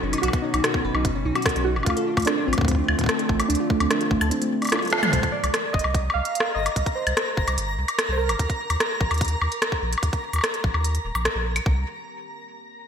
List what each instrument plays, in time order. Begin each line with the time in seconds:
Already playing: ambient pad B2 D#3 F#3 C#4 F#4, synth keys D#4
0.03 sub bass F#1, synth pluck C#4
0.13 synth pluck D#4, closed hi-hat, high woodblock
0.18 synth keys F#4, high woodblock
0.23 sub bass B1, synth pluck F#4, closed hi-hat, high woodblock
0.28 high woodblock
0.33 synth pluck B3, kick, closed hi-hat
0.42 synth pluck C#4, synth keys D#4
0.54 sub bass B1, synth pluck D#4, closed hi-hat, high woodblock
0.64 synth pluck F#4, cross-stick, closed hi-hat
0.74 synth pluck B3, kick
0.84 sub bass F#1, synth pluck B4
0.95 sub bass B1, synth pluck D#4, high woodblock
1.05 sub bass F#1, synth pluck B3, kick, closed hi-hat
1.15 synth pluck C#4
1.25 sub bass B1, synth pluck D#4
1.35 synth pluck F#4, closed hi-hat, high woodblock
1.42 kick, cross-stick, closed hi-hat
1.46 synth pluck B3, closed hi-hat
1.49 closed hi-hat
1.56 sub bass B1, synth pluck C#4, closed hi-hat
1.64 synth pluck D#4, synth keys F#4
1.76 sub bass F#1, synth pluck F#4, high woodblock
1.83 sub bass D2, ambient pad D3 F3 A3 C4 F4, synth pluck A3, synth keys F4, kick, closed hi-hat, high woodblock
1.90 high woodblock
1.97 synth pluck A4, closed hi-hat
2.07 synth pluck D4
2.17 sub bass D2, synth pluck A3, kick, closed hi-hat, high woodblock
2.20 closed hi-hat
2.22 closed hi-hat
2.25 synth keys D4, cross-stick, closed hi-hat
2.27 synth pluck C4, closed hi-hat
2.38 synth pluck D4
2.46 sub bass A1, synth keys C4, synth pluck F4
2.53 closed hi-hat, high woodblock
2.58 sub bass D2, synth pluck A3, kick
2.61 kick
2.65 kick
2.68 synth pluck C4, kick, closed hi-hat
2.71 kick
2.75 synth pluck D4, kick
2.88 sub bass D2, synth pluck F4, high woodblock
2.99 synth pluck A3, kick, closed hi-hat
3.01 kick
3.04 kick
3.06 synth pluck A4, kick, cross-stick, closed hi-hat
3.19 synth pluck D4, closed hi-hat
3.29 sub bass A1, synth pluck A3, kick
3.40 synth pluck C4, closed hi-hat, high woodblock
3.48 sub bass D2, synth keys D4, synth pluck D4, closed hi-hat
3.55 closed hi-hat
3.60 synth pluck F4
3.70 synth pluck A3, kick
3.80 sub bass D2, synth pluck C4, closed hi-hat, high woodblock
3.91 synth pluck D4, cross-stick, closed hi-hat
4.01 synth pluck F4, closed hi-hat
4.11 sub bass A1, synth pluck A3, kick
4.21 sub bass D2, synth pluck A4, closed hi-hat, high woodblock
4.30 synth keys C4, synth pluck D4, closed hi-hat
4.42 synth pluck A3, closed hi-hat
4.52 synth pluck A3
4.62 synth pluck D4, closed hi-hat, high woodblock
4.65 closed hi-hat, high woodblock
4.67 closed hi-hat, high woodblock
4.70 cross-stick, closed hi-hat
4.72 synth pluck F4, closed hi-hat, high tom, high woodblock
4.76 high woodblock
4.79 synth pluck F4, closed hi-hat, high woodblock
4.85 closed hi-hat
4.88 closed hi-hat
4.90 synth pluck F4, synth keys A4, snare, closed hi-hat
5.03 synth pluck A3, closed hi-hat, mid tom, high woodblock
5.12 sub bass C2, synth texture A#4 A#5, synth keys C5, kick, closed hi-hat
5.23 kick, closed hi-hat
5.32 synth keys D5
5.44 sub bass C2, closed hi-hat, high woodblock
5.54 cross-stick, closed hi-hat
5.73 sub bass G1, synth keys D#5, kick
5.79 closed hi-hat
5.84 sub bass C2, high woodblock
5.95 kick, closed hi-hat
6.10 synth keys F5, high woodblock
6.15 sub bass C2
6.25 closed hi-hat
6.35 closed hi-hat
6.40 cross-stick
6.55 sub bass G1, synth keys D#5
6.66 closed hi-hat, high woodblock
6.76 sub bass C2, kick, closed hi-hat
6.86 kick, closed hi-hat
6.95 synth keys C5
7.07 sub bass C2, closed hi-hat, high woodblock
7.17 cross-stick, closed hi-hat
7.37 sub bass G1, kick
7.48 sub bass C2, closed hi-hat, high woodblock
7.58 sub bass G1, closed hi-hat
7.78 sub bass C2
7.88 closed hi-hat, high woodblock
7.99 cross-stick, closed hi-hat
8.09 sub bass C2, synth keys C5
8.17 synth keys A#4
8.29 sub bass G1, closed hi-hat, high woodblock
8.39 sub bass D#2, kick, closed hi-hat
8.50 kick, closed hi-hat
8.70 sub bass D#2, closed hi-hat, high woodblock
8.80 cross-stick, closed hi-hat
9.01 sub bass A#1, kick
9.11 sub bass D#2, closed hi-hat, high woodblock
9.14 closed hi-hat
9.18 kick, closed hi-hat
9.21 closed hi-hat
9.25 closed hi-hat
9.28 closed hi-hat
9.42 sub bass D#2, high woodblock
9.52 closed hi-hat
9.62 cross-stick, closed hi-hat
9.72 kick
9.82 sub bass A#1
9.93 closed hi-hat
9.98 high woodblock
10.03 sub bass D#2, kick, closed hi-hat
10.13 kick, closed hi-hat
10.33 sub bass D#2, closed hi-hat, high woodblock
10.36 high woodblock
10.38 high woodblock
10.41 cross-stick, closed hi-hat, high woodblock
10.54 closed hi-hat
10.64 sub bass A#1, kick
10.74 sub bass D#2, high woodblock
10.84 closed hi-hat
10.95 closed hi-hat
11.05 sub bass D#1
11.15 sub bass A#1, closed hi-hat, high woodblock
11.25 cross-stick, closed hi-hat
11.35 sub bass A#1
11.56 closed hi-hat, high woodblock
11.66 sub bass C2, kick